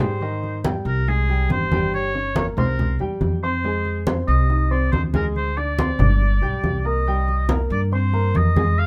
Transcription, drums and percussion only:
0.21 high conga soft
0.43 high conga soft
0.65 high conga medium
0.86 high conga soft
1.07 high conga soft
1.29 high conga soft
1.50 high conga medium
1.72 high conga medium
1.94 high conga soft
2.15 high conga soft
2.36 high conga loud
2.58 high conga soft
2.58 low conga medium
2.79 high conga soft
2.79 low conga medium
3.00 high conga soft
3.21 high conga medium
3.64 high conga soft
3.85 high conga soft
4.07 high conga loud
4.29 high conga soft
4.50 high conga soft
4.72 high conga soft
4.93 high conga medium
5.14 high conga medium
5.36 high conga soft
5.57 high conga soft
5.79 high conga medium
6.00 high conga soft
6.00 low conga medium
6.21 high conga soft
6.43 high conga soft
6.64 high conga medium
7.07 high conga soft
7.28 high conga soft
7.49 high conga medium
7.72 high conga soft
7.92 high conga soft
8.13 high conga soft
8.35 high conga medium
8.57 high conga medium
8.78 high conga soft

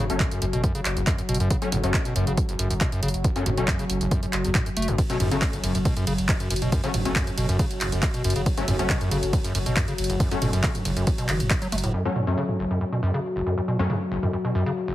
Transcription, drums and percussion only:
0.10 closed hi-hat medium
0.20 kick loud
0.20 clap loud
0.31 closed hi-hat medium
0.42 open hi-hat loud
0.53 closed hi-hat medium
0.64 kick loud
0.64 closed hi-hat medium
0.75 closed hi-hat medium
0.85 clap medium
0.85 open hi-hat loud
0.97 closed hi-hat medium
1.07 kick loud
1.07 clap loud
1.07 closed hi-hat medium
1.18 closed hi-hat medium
1.29 open hi-hat loud
1.34 closed hi-hat medium
1.40 closed hi-hat medium
1.50 kick loud
1.50 closed hi-hat medium
1.62 closed hi-hat medium
1.72 mid tom medium
1.72 open hi-hat loud
1.84 closed hi-hat medium
1.94 kick loud
1.94 clap loud
2.05 closed hi-hat medium
2.16 open hi-hat loud
2.27 closed hi-hat medium
2.37 kick loud
2.37 closed hi-hat medium
2.49 closed hi-hat medium
2.59 open hi-hat loud
2.71 closed hi-hat medium
2.81 kick loud
2.81 clap loud
2.81 closed hi-hat medium
2.92 closed hi-hat medium
3.03 open hi-hat loud
3.08 closed hi-hat medium
3.14 closed hi-hat medium
3.24 kick loud
3.24 closed hi-hat medium
3.36 open hi-hat medium
3.46 mid tom medium
3.46 open hi-hat loud
3.57 closed hi-hat medium
3.68 kick loud
3.68 clap loud
3.79 closed hi-hat medium
3.90 open hi-hat loud
4.01 closed hi-hat medium
4.11 kick loud
4.11 closed hi-hat medium
4.23 closed hi-hat medium
4.33 clap medium
4.33 open hi-hat loud
4.45 closed hi-hat medium
4.55 kick loud
4.55 clap loud
4.55 closed hi-hat medium
4.66 closed hi-hat medium
4.77 open hi-hat loud
4.82 closed hi-hat medium
4.88 closed hi-hat medium
4.98 kick loud
4.98 closed hi-hat medium
4.98 ride medium
5.10 closed hi-hat soft
5.10 ride medium
5.20 mid tom loud
5.20 open hi-hat loud
5.20 ride medium
5.31 closed hi-hat medium
5.31 ride medium
5.42 kick loud
5.42 clap loud
5.42 ride medium
5.53 closed hi-hat soft
5.53 ride medium
5.64 open hi-hat loud
5.64 ride medium
5.75 closed hi-hat medium
5.75 ride medium
5.85 kick loud
5.85 closed hi-hat medium
5.85 ride medium
5.97 closed hi-hat medium
5.97 ride medium
6.07 open hi-hat loud
6.07 ride medium
6.18 closed hi-hat medium
6.18 ride medium
6.29 kick loud
6.29 clap loud
6.29 closed hi-hat medium
6.29 ride medium
6.40 closed hi-hat medium
6.40 ride medium
6.50 open hi-hat loud
6.50 ride medium
6.56 closed hi-hat medium
6.62 closed hi-hat soft
6.62 ride medium
6.72 kick loud
6.72 closed hi-hat medium
6.72 ride medium
6.84 open hi-hat medium
6.84 ride medium
6.94 mid tom loud
6.94 open hi-hat loud
6.94 ride medium
7.05 closed hi-hat medium
7.05 ride medium
7.16 kick loud
7.16 clap loud
7.16 ride medium
7.27 closed hi-hat soft
7.27 ride medium
7.38 open hi-hat loud
7.38 ride medium
7.49 closed hi-hat medium
7.49 ride medium
7.59 kick loud
7.59 closed hi-hat medium
7.59 ride medium
7.71 closed hi-hat medium
7.71 ride medium
7.81 clap medium
7.81 open hi-hat loud
7.81 ride medium
7.92 closed hi-hat medium
7.92 ride medium
8.03 kick loud
8.03 clap loud
8.03 closed hi-hat medium
8.03 ride medium
8.14 closed hi-hat medium
8.14 ride medium
8.24 open hi-hat loud
8.24 ride medium
8.30 closed hi-hat medium
8.36 closed hi-hat medium
8.36 ride medium
8.46 kick loud
8.46 closed hi-hat medium
8.46 ride medium
8.57 closed hi-hat medium
8.57 ride medium
8.68 mid tom loud
8.68 open hi-hat loud
8.68 ride medium
8.79 closed hi-hat medium
8.79 ride medium
8.90 kick loud
8.90 clap loud
8.90 ride medium
9.01 closed hi-hat medium
9.01 ride medium
9.11 open hi-hat loud
9.11 ride medium
9.23 closed hi-hat medium
9.23 ride medium
9.33 kick loud
9.33 closed hi-hat medium
9.33 ride medium
9.44 closed hi-hat medium
9.44 ride medium
9.55 open hi-hat loud
9.55 ride medium
9.66 closed hi-hat medium
9.66 ride medium
9.77 kick loud
9.77 clap loud
9.77 closed hi-hat medium
9.77 ride medium
9.88 closed hi-hat medium
9.88 ride medium
9.98 open hi-hat loud
9.98 ride medium
10.04 closed hi-hat medium
10.10 closed hi-hat medium
10.10 ride medium
10.20 kick loud
10.20 closed hi-hat medium
10.20 ride medium
10.31 open hi-hat medium
10.31 ride medium
10.42 mid tom medium
10.42 open hi-hat loud
10.42 ride medium
10.53 closed hi-hat medium
10.53 ride medium
10.64 kick loud
10.64 clap loud
10.64 closed hi-hat soft
10.64 ride medium
10.75 closed hi-hat medium
10.75 mid tom medium
10.75 ride medium
10.85 open hi-hat loud
10.85 ride medium
10.97 closed hi-hat medium
10.97 ride medium
11.07 kick loud
11.07 closed hi-hat medium
11.07 ride medium
11.18 closed hi-hat medium
11.18 ride medium
11.29 clap medium
11.29 open hi-hat loud
11.29 ride medium
11.40 closed hi-hat medium
11.40 ride medium
11.50 kick loud
11.50 clap loud
11.50 closed hi-hat medium
11.50 ride medium
11.62 closed hi-hat medium
11.62 ride medium
11.72 open hi-hat loud
11.72 ride medium
11.78 closed hi-hat medium
11.84 closed hi-hat medium
11.84 ride medium
12.16 mid tom medium
12.49 mid tom medium
13.90 mid tom medium
14.23 mid tom medium

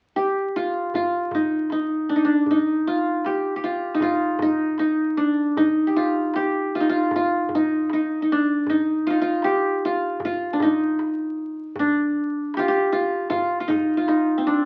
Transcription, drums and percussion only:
0.94 darbuka dum medium
1.31 darbuka dum medium
1.51 darbuka ka soft
1.70 darbuka tek medium
2.46 darbuka dum medium
3.25 darbuka tek medium
3.83 darbuka ka soft
4.00 darbuka dum medium
4.20 darbuka ka soft
4.39 darbuka dum medium
4.59 darbuka ka soft
4.78 darbuka tek medium
5.57 darbuka dum medium
6.34 darbuka tek medium
6.92 darbuka ka soft
7.11 darbuka dum medium
7.30 darbuka ka soft
7.49 darbuka dum medium
7.70 darbuka ka soft
7.90 darbuka tek medium
8.67 darbuka dum medium
9.42 darbuka tek medium
10.01 darbuka ka soft
10.20 darbuka dum medium
10.40 darbuka ka soft
10.60 darbuka dum medium
10.80 darbuka ka soft
10.99 darbuka tek medium
11.38 darbuka ka soft
11.76 darbuka dum medium
11.96 darbuka ka soft
12.54 darbuka tek medium
12.94 darbuka ka soft
13.31 darbuka dum medium
13.51 darbuka ka soft
13.70 darbuka dum medium
13.90 darbuka ka soft
14.08 darbuka tek medium

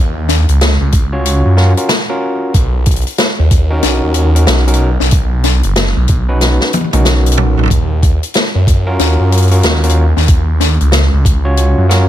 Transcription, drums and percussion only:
0.29 snare soft
0.29 closed hi-hat medium
0.49 closed hi-hat medium
0.61 snare loud
0.61 closed hi-hat medium
0.92 kick loud
0.92 closed hi-hat medium
1.26 closed hi-hat medium
1.57 snare soft
1.77 closed hi-hat medium
1.89 snare loud
1.89 closed hi-hat medium
2.54 kick loud
2.54 closed hi-hat medium
2.86 kick loud
2.86 closed hi-hat medium
2.91 closed hi-hat medium
2.96 closed hi-hat soft
3.01 closed hi-hat soft
3.07 closed hi-hat medium
3.10 closed hi-hat soft
3.12 closed hi-hat soft
3.15 closed hi-hat soft
3.18 snare loud
3.18 closed hi-hat medium
3.51 kick loud
3.51 closed hi-hat medium
3.83 snare medium
3.83 closed hi-hat medium
4.14 closed hi-hat medium
4.36 closed hi-hat medium
4.47 snare loud
4.47 closed hi-hat medium
4.68 closed hi-hat medium
4.74 closed hi-hat medium
5.00 snare soft
5.11 kick loud
5.11 closed hi-hat medium
5.44 snare medium
5.44 closed hi-hat medium
5.63 closed hi-hat medium
5.76 snare loud
5.76 closed hi-hat loud
6.08 kick loud
6.08 closed hi-hat medium
6.41 snare medium
6.41 closed hi-hat loud
6.60 snare medium
6.73 closed hi-hat medium
6.73 high tom medium
6.77 high tom medium
6.81 high tom soft
6.84 high tom soft
6.91 closed hi-hat medium
6.91 mid tom medium
6.91 high tom soft
7.05 snare medium
7.05 closed hi-hat medium
7.26 closed hi-hat medium
7.32 closed hi-hat medium
7.37 mid tom loud
7.57 mid tom soft
7.59 mid tom soft
7.63 mid tom medium
7.66 mid tom medium
7.68 kick loud
7.68 closed hi-hat medium
7.68 mid tom medium
8.03 kick loud
8.03 closed hi-hat medium
8.23 closed hi-hat medium
8.34 snare loud
8.34 closed hi-hat medium
8.67 kick loud
8.67 closed hi-hat medium
8.99 snare medium
8.99 closed hi-hat medium
9.32 closed hi-hat medium
9.37 closed hi-hat medium
9.42 closed hi-hat medium
9.48 closed hi-hat soft
9.51 closed hi-hat medium
9.51 closed hi-hat soft
9.55 closed hi-hat soft
9.59 closed hi-hat soft
9.61 closed hi-hat soft
9.63 snare loud
9.63 closed hi-hat medium
9.83 closed hi-hat medium
9.89 closed hi-hat medium
10.16 snare soft
10.28 kick loud
10.28 closed hi-hat medium
10.60 snare soft
10.60 closed hi-hat medium
10.81 closed hi-hat soft
10.92 snare loud
10.92 closed hi-hat loud
11.25 kick loud
11.25 closed hi-hat medium
11.57 closed hi-hat medium
11.90 snare soft
11.90 closed hi-hat medium

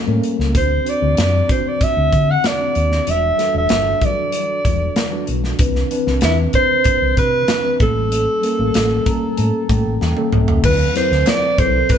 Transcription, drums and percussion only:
0.23 closed hi-hat medium
0.40 snare soft
0.55 kick medium
0.55 closed hi-hat loud
0.86 closed hi-hat medium
1.17 snare loud
1.17 closed hi-hat medium
1.49 kick medium
1.49 closed hi-hat medium
1.81 kick medium
1.81 closed hi-hat medium
2.13 kick medium
2.13 closed hi-hat medium
2.44 snare medium
2.44 closed hi-hat medium
2.75 closed hi-hat medium
2.92 snare soft
3.07 closed hi-hat medium
3.39 snare soft
3.39 closed hi-hat medium
3.69 snare loud
3.69 closed hi-hat medium
4.01 kick medium
4.01 closed hi-hat medium
4.32 closed hi-hat medium
4.65 kick medium
4.65 closed hi-hat medium
4.96 snare loud
4.96 closed hi-hat medium
5.27 closed hi-hat medium
5.44 snare soft
5.59 kick loud
5.59 closed hi-hat loud
5.75 snare soft
5.91 closed hi-hat medium
6.07 snare soft
6.21 snare loud
6.21 closed hi-hat medium
6.53 kick medium
6.53 closed hi-hat medium
6.84 kick medium
6.84 closed hi-hat medium
7.17 kick medium
7.17 closed hi-hat medium
7.48 snare loud
7.48 closed hi-hat medium
7.80 kick loud
7.80 closed hi-hat medium
8.12 closed hi-hat medium
8.43 closed hi-hat medium
8.74 snare loud
8.74 closed hi-hat medium
9.06 kick medium
9.06 closed hi-hat medium
9.38 closed hi-hat medium
9.69 kick medium
9.69 closed hi-hat medium
10.01 snare soft
10.17 high tom medium
10.32 mid tom medium
10.48 floor tom medium
10.64 kick loud
10.64 crash medium
10.95 snare soft
10.95 closed hi-hat medium
11.12 snare soft
11.26 snare loud
11.26 clap medium
11.26 closed hi-hat medium
11.58 kick medium
11.58 closed hi-hat medium
11.89 kick medium
11.89 closed hi-hat medium

